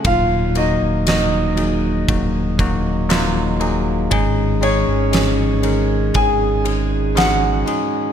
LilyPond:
<<
  \new Staff \with { instrumentName = "Grand piano" } { \time 4/4 \key ees \dorian \tempo 4 = 59 <f' f''>8 <ees' ees''>8 <ees' ees''>2~ <ees' ees''>8 r8 | r8 <des' des''>4. <aes' aes''>4 <ges' ges''>4 | }
  \new Staff \with { instrumentName = "Tine electric piano" } { \time 4/4 \key ees \dorian <ges bes ees' f'>8 <ges bes ees' ges'>8 <ges bes ees' ges'>8 <ges bes ees' aes'>8 <ges bes ees' ges'>8 <ges bes ees' ges'>8 <ges bes ees' f'>8 <ges bes ees' aes'>8 | <aes des' ees' aes'>8 <aes des' ees' aes'>8 <aes des' ees' aes'>8 <aes des' ees' bes'>8 <aes des' ees' aes'>8 <aes des' ees' aes'>8 <aes des' ees' aes'>8 <aes des' ees' aes'>8 | }
  \new Staff \with { instrumentName = "Tine electric piano" } { \clef bass \time 4/4 \key ees \dorian bes,4. r2 r8 | <aes, ees>4. r2 r8 | }
  \new Staff \with { instrumentName = "Sub bass" } { \clef bass \time 4/4 \key ees \dorian ees,,8. ees,,4~ ees,,16 ees,,2 | aes,,8. aes,,4~ aes,,16 aes,,4. r8 | }
  \new DrumStaff \with { instrumentName = "Drums" } \drummode { \time 4/4 <bd cymr>8 cymr8 <cymr sn>8 cymr8 <bd cymr>8 <bd cymr>8 <cymr sn>8 cymr8 | <bd cymr>8 cymr8 <cymr sn>8 cymr8 <bd cymr>8 cymr8 <cymr sn>8 cymr8 | }
>>